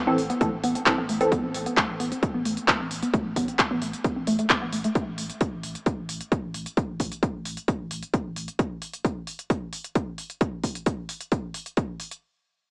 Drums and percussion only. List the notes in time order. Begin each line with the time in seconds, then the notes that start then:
0.18 open hi-hat
0.30 closed hi-hat
0.41 kick, closed hi-hat
0.64 open hi-hat
0.75 closed hi-hat
0.86 kick, clap, closed hi-hat
1.09 open hi-hat
1.21 closed hi-hat
1.32 kick, closed hi-hat
1.55 open hi-hat
1.66 closed hi-hat
1.77 kick, clap, closed hi-hat
2.00 open hi-hat
2.12 closed hi-hat
2.23 kick, closed hi-hat
2.45 open hi-hat
2.57 closed hi-hat
2.68 kick, clap, closed hi-hat
2.91 open hi-hat
3.03 closed hi-hat
3.14 kick, closed hi-hat
3.36 kick, open hi-hat
3.48 closed hi-hat
3.59 kick, clap, closed hi-hat
3.82 open hi-hat
3.93 closed hi-hat
4.04 kick, closed hi-hat
4.27 open hi-hat
4.39 closed hi-hat
4.50 kick, clap, closed hi-hat
4.73 open hi-hat
4.84 closed hi-hat
4.95 kick, closed hi-hat
5.18 open hi-hat
5.30 closed hi-hat
5.41 kick, closed hi-hat
5.63 open hi-hat
5.75 closed hi-hat
5.86 kick, closed hi-hat
6.09 open hi-hat
6.21 closed hi-hat
6.32 kick, closed hi-hat
6.54 open hi-hat
6.66 closed hi-hat
6.77 kick, closed hi-hat
7.00 kick, open hi-hat
7.12 closed hi-hat
7.23 kick, closed hi-hat
7.45 open hi-hat
7.57 closed hi-hat
7.68 kick, closed hi-hat
7.91 open hi-hat
8.03 closed hi-hat
8.14 kick, closed hi-hat
8.36 open hi-hat
8.48 closed hi-hat
8.59 kick, closed hi-hat
8.82 open hi-hat
8.94 closed hi-hat
9.05 kick, closed hi-hat
9.27 open hi-hat
9.39 closed hi-hat
9.50 kick, closed hi-hat
9.73 open hi-hat
9.84 closed hi-hat
9.95 kick, closed hi-hat
10.18 open hi-hat
10.30 closed hi-hat
10.41 kick, closed hi-hat
10.64 kick, open hi-hat
10.75 closed hi-hat
10.86 kick, closed hi-hat
11.09 open hi-hat
11.21 closed hi-hat
11.32 kick, closed hi-hat
11.54 open hi-hat
11.66 closed hi-hat
11.77 kick, closed hi-hat
12.00 open hi-hat
12.11 closed hi-hat